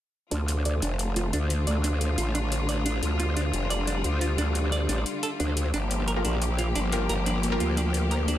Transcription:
0.31 0.81 D2 loud
0.31 5.70 D3 medium
0.31 3.00 A3 medium
0.31 0.35 D4 medium
0.31 6.49 D4 medium
0.31 5.70 F4 medium
0.31 closed hi-hat medium
0.48 closed hi-hat medium
0.63 5.74 A4 medium
0.63 0.75 D5 medium
0.63 closed hi-hat medium
0.82 1.32 F1 loud
0.82 0.92 D4 medium
0.82 closed hi-hat medium
0.99 closed hi-hat medium
1.16 1.26 F4 medium
1.16 closed hi-hat medium
1.33 1.66 D2 medium
1.33 1.37 D4 medium
1.33 closed hi-hat medium
1.50 closed hi-hat medium
1.55 3.68 F5 medium
1.67 2.17 D2 loud
1.67 1.77 D5 medium
1.67 closed hi-hat medium
1.84 1.94 D4 medium
1.84 closed hi-hat medium
2.01 closed hi-hat medium
2.18 3.01 A1 loud
2.18 2.27 F4 medium
2.18 closed hi-hat medium
2.35 2.39 D4 medium
2.35 closed hi-hat medium
2.52 closed hi-hat medium
2.69 2.78 D5 medium
2.69 closed hi-hat medium
2.86 2.95 D4 medium
2.86 closed hi-hat medium
3.03 3.52 D2 loud
3.03 5.71 G3 medium
3.03 closed hi-hat medium
3.20 3.29 F4 medium
3.20 closed hi-hat medium
3.37 3.40 D4 loud
3.37 closed hi-hat medium
3.53 4.03 F1 loud
3.53 closed hi-hat medium
3.58 6.50 E5 medium
3.70 3.80 D5 medium
3.70 closed hi-hat medium
3.87 3.97 D4 medium
3.87 closed hi-hat medium
4.04 4.37 D2 loud
4.04 closed hi-hat medium
4.21 4.31 F4 medium
4.21 closed hi-hat medium
4.38 4.88 D2 medium
4.38 4.42 D4 medium
4.38 closed hi-hat medium
4.55 closed hi-hat medium
4.72 4.82 D5 medium
4.72 closed hi-hat medium
4.89 5.05 A1 loud
4.89 4.99 D4 medium
4.89 closed hi-hat medium
5.06 closed hi-hat medium
5.23 5.29 A4 medium
5.23 closed hi-hat medium
5.40 5.72 D2 medium
5.40 5.44 D4 medium
5.40 closed hi-hat medium
5.57 closed hi-hat medium
5.74 6.23 G1 loud
5.74 8.38 F3 medium
5.74 8.38 A#3 medium
5.74 5.78 D4 loud
5.74 8.38 F4 medium
5.74 8.38 G4 medium
5.74 closed hi-hat medium
5.91 closed hi-hat medium
6.08 6.12 A#4 medium
6.08 closed hi-hat medium
6.16 6.26 F4 medium
6.16 6.26 G4 medium
6.16 6.26 A#4 medium
6.16 8.38 A#4 medium
6.25 6.74 A#1 medium
6.25 6.34 D4 medium
6.25 closed hi-hat medium
6.42 closed hi-hat medium
6.59 6.68 F4 medium
6.59 closed hi-hat medium
6.75 7.08 G1 medium
6.75 6.79 D4 medium
6.75 closed hi-hat medium
6.92 7.08 F4 medium
6.92 7.08 G4 medium
6.92 7.08 A#4 medium
6.92 closed hi-hat medium
7.09 7.59 G1 loud
7.09 7.13 A#4 medium
7.09 8.38 G5 medium
7.09 closed hi-hat medium
7.26 7.36 D4 medium
7.26 closed hi-hat medium
7.43 closed hi-hat medium
7.52 7.62 F4 medium
7.52 7.62 G4 medium
7.52 7.62 A#4 loud
7.60 8.38 D2 loud
7.60 7.70 F4 medium
7.60 closed hi-hat medium
7.77 7.81 D4 loud
7.77 closed hi-hat medium
7.94 closed hi-hat medium
8.11 8.15 A#4 medium
8.11 closed hi-hat medium
8.28 8.38 D4 medium
8.28 closed hi-hat medium

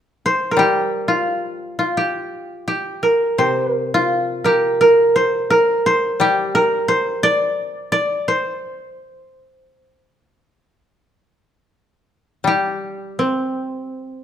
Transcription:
0.26 1.97 C5 medium
0.51 2.35 A#4 medium
0.57 2.68 G3 medium
0.57 1.97 G4 medium
1.08 1.78 F4 medium
1.79 3.94 F4 medium
1.97 2.67 G4 medium
2.68 4.45 G4 medium
3.03 3.72 A#4 medium
3.38 5.53 C3 soft
3.38 3.72 C5 medium
3.72 4.44 A#4 medium
3.94 6.13 F4 medium
4.44 6.21 G4 medium
4.44 4.80 A#4 soft
4.81 5.50 A#4 medium
5.16 5.86 C5 medium
5.50 6.54 A#4 medium
5.86 6.88 C5 medium
6.20 8.27 G3 soft
6.20 8.25 G4 medium
6.55 8.39 A#4 medium
6.88 8.28 C5 medium
7.23 7.92 D5 medium
7.92 9.52 D5 medium
8.28 10.00 C5 medium
12.44 14.24 G3 soft
12.44 14.24 G4 medium
13.19 14.24 C4 medium

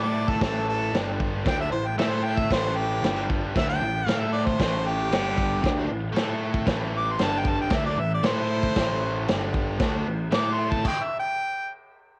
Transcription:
0.00 0.37 A2 medium
0.00 0.41 A3 medium
0.00 0.42 E4 loud
0.00 0.42 A4 loud
0.00 0.30 D5 medium
0.28 0.41 A4 medium
0.28 kick medium
0.41 0.90 A1 medium
0.41 0.93 A2 loud
0.41 0.93 E3 medium
0.41 0.93 A3 loud
0.41 0.67 A4 medium
0.41 kick loud
0.41 snare loud
0.41 crash medium
0.69 0.94 A4 loud
0.93 1.42 G1 medium
0.93 1.45 G2 loud
0.93 1.44 D3 loud
0.93 1.45 G3 loud
0.93 snare loud
0.93 crash medium
1.20 kick medium
1.45 1.70 D2 loud
1.45 1.71 D3 loud
1.45 1.71 A3 medium
1.45 1.72 D4 loud
1.45 1.59 G5 medium
1.45 kick loud
1.45 snare loud
1.45 crash medium
1.61 1.71 E5 medium
1.71 1.96 A1 medium
1.71 1.93 A2 medium
1.71 1.94 E3 medium
1.71 1.88 C5 medium
1.87 1.98 G5 medium
1.97 2.46 A2 medium
1.97 2.50 A3 medium
1.97 2.50 E4 medium
1.97 2.50 A4 loud
1.97 2.11 E5 medium
1.97 snare loud
1.97 crash medium
2.09 2.26 C5 medium
2.24 2.39 G5 medium
2.37 2.50 E5 medium
2.37 kick medium
2.50 2.99 A1 medium
2.50 3.02 A2 loud
2.50 3.02 E3 loud
2.50 3.03 A3 loud
2.50 2.78 C5 loud
2.50 kick loud
2.50 snare loud
2.50 crash medium
2.76 3.27 G4 loud
3.02 3.51 G1 medium
3.02 3.54 G2 medium
3.02 3.53 D3 loud
3.02 3.55 G3 loud
3.02 snare loud
3.02 crash medium
3.30 kick medium
3.55 3.80 D2 medium
3.55 3.80 D3 medium
3.55 3.81 A3 loud
3.55 3.81 D4 loud
3.55 3.68 E5 loud
3.55 kick loud
3.55 snare loud
3.55 crash medium
3.69 4.07 G5 loud
3.81 4.05 A1 medium
3.81 4.02 A2 medium
3.81 4.02 E3 medium
4.06 4.55 A2 medium
4.06 4.58 A3 medium
4.06 4.59 E4 medium
4.06 4.59 A4 loud
4.06 4.22 F5 loud
4.06 snare loud
4.06 crash medium
4.20 4.32 E5 medium
4.32 4.48 D5 loud
4.46 4.89 C5 loud
4.46 kick medium
4.59 5.08 A1 loud
4.59 5.12 A2 medium
4.59 5.12 E3 loud
4.59 5.12 A3 loud
4.59 kick loud
4.59 snare loud
4.59 crash medium
4.87 5.88 G4 loud
5.11 5.60 G1 medium
5.11 5.63 G2 medium
5.11 5.61 D3 loud
5.11 5.63 G3 loud
5.11 snare loud
5.11 crash medium
5.38 kick medium
5.62 5.88 D2 loud
5.62 5.88 D3 medium
5.62 5.89 A3 medium
5.62 5.89 D4 loud
5.62 kick loud
5.62 snare loud
5.62 crash medium
5.89 6.13 A1 medium
5.89 6.10 A2 medium
5.89 6.10 E3 medium
6.13 6.63 A2 medium
6.13 6.66 A3 loud
6.13 6.66 E4 medium
6.13 6.66 A4 medium
6.13 snare loud
6.13 crash medium
6.54 kick medium
6.66 7.16 A1 medium
6.66 7.18 A2 medium
6.66 7.19 E3 loud
6.66 7.19 A3 loud
6.66 kick loud
6.66 snare loud
6.66 crash medium
6.97 7.14 D6 loud
7.12 7.26 C6 medium
7.19 7.68 G1 medium
7.19 7.71 G2 loud
7.19 7.70 D3 medium
7.19 7.70 G3 loud
7.19 snare loud
7.19 crash medium
7.24 7.40 A5 loud
7.39 7.51 G5 medium
7.45 kick medium
7.50 7.60 A5 medium
7.62 7.78 G5 medium
7.70 7.96 D2 medium
7.70 7.97 D3 medium
7.70 7.97 A3 loud
7.70 7.97 D4 loud
7.70 kick loud
7.70 snare loud
7.70 crash medium
7.76 7.86 E5 loud
7.86 8.01 D5 medium
7.97 8.22 A1 medium
7.97 8.19 A2 medium
7.97 8.20 E3 medium
7.97 8.11 E5 loud
8.14 8.25 D5 medium
8.23 8.72 A2 medium
8.23 8.75 A3 loud
8.23 8.76 E4 loud
8.23 8.76 A4 loud
8.23 9.26 C5 loud
8.23 snare loud
8.23 crash medium
8.63 kick medium
8.76 9.25 A1 medium
8.76 9.27 A2 loud
8.76 9.28 E3 loud
8.76 9.28 A3 loud
8.76 kick loud
8.76 snare loud
8.76 crash medium
9.28 9.77 G1 medium
9.28 9.79 G2 medium
9.28 9.79 D3 medium
9.28 9.79 G3 loud
9.28 snare loud
9.28 crash medium
9.54 kick medium
9.79 10.04 D2 loud
9.79 10.05 D3 medium
9.79 10.05 A3 medium
9.79 10.06 D4 loud
9.79 kick loud
9.79 snare loud
9.79 crash medium
10.07 10.32 A1 medium
10.07 10.28 A2 medium
10.07 10.28 E3 medium
10.32 10.82 A2 medium
10.32 10.83 A3 medium
10.32 10.84 E4 loud
10.32 10.84 A4 loud
10.32 10.54 D6 loud
10.32 snare loud
10.32 crash medium
10.53 10.73 C6 medium
10.72 10.86 A5 medium
10.72 kick medium
10.85 11.05 G5 loud
10.85 kick loud
10.85 crash loud
11.04 11.19 E5 medium
11.19 11.70 G5 loud

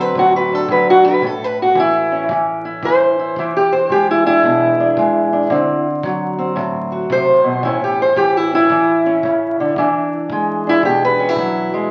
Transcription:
0.00 1.20 D3 medium
0.00 0.68 F#3 medium
0.00 1.22 C4 soft
0.00 0.17 B4 loud
0.15 1.21 A2 medium
0.15 0.35 F#4 loud
0.15 kick medium
0.36 0.55 B4 loud
0.53 1.04 D4 soft
0.53 0.71 A4 medium
0.69 1.20 F#3 medium
0.69 0.88 B4 loud
0.69 kick medium
0.90 1.07 F#4 loud
1.05 1.21 D4 medium
1.05 1.24 B4 loud
1.22 3.34 A2 medium
1.22 kick medium
1.27 1.44 A4 loud
1.44 1.60 B4 medium
1.62 1.78 F#4 medium
1.75 2.28 E3 medium
1.75 kick medium
1.80 2.31 E4 loud
2.12 3.35 C#4 soft
2.29 2.82 E3 medium
2.29 kick medium
2.65 3.18 E4 medium
2.83 3.38 E3 medium
2.83 3.55 C5 loud
2.83 kick medium
3.19 3.35 E4 soft
3.36 5.49 E3 medium
3.36 3.56 E4 soft
3.36 kick medium
3.57 3.73 G4 medium
3.73 3.90 C5 medium
3.90 4.97 G#3 medium
3.90 4.09 G4 loud
3.90 kick medium
4.11 4.25 E4 loud
4.26 4.79 D4 soft
4.26 5.86 E4 loud
4.44 5.49 B2 medium
4.44 kick medium
4.80 5.32 D4 medium
4.97 5.49 G#3 medium
4.97 kick medium
5.33 5.49 D4 medium
5.50 7.10 D3 medium
5.50 6.37 C4 medium
5.50 kick medium
6.03 7.62 F#3 medium
6.03 kick medium
6.38 7.62 C4 medium
6.56 7.61 A2 medium
6.56 kick medium
6.92 7.62 F#4 medium
7.10 7.44 C3 medium
7.10 7.83 C5 loud
7.10 kick medium
7.44 7.63 B2 medium
7.63 9.75 A2 medium
7.63 8.17 E3 soft
7.63 8.52 C#4 medium
7.63 7.83 E4 medium
7.63 kick medium
7.84 8.01 G4 medium
8.02 8.19 C5 loud
8.17 8.70 E3 medium
8.17 8.37 G4 loud
8.17 kick medium
8.37 8.53 E4 loud
8.53 9.05 C#4 soft
8.53 10.14 E4 loud
8.70 9.24 E3 medium
8.70 kick medium
9.06 9.76 C#4 medium
9.23 9.59 C#3 medium
9.23 kick medium
9.60 9.77 D3 medium
9.76 11.88 E3 medium
9.76 10.65 D4 soft
9.76 kick medium
10.30 11.38 G#3 medium
10.30 kick medium
10.67 11.89 D4 soft
10.67 10.85 E4 loud
10.83 11.89 B2 medium
10.83 11.02 G4 loud
10.83 kick medium
11.05 11.32 B4 loud
11.19 11.29 C#4 medium
11.29 11.91 E4 medium
11.36 11.73 F#3 medium
11.36 kick medium
11.74 11.91 G#3 medium

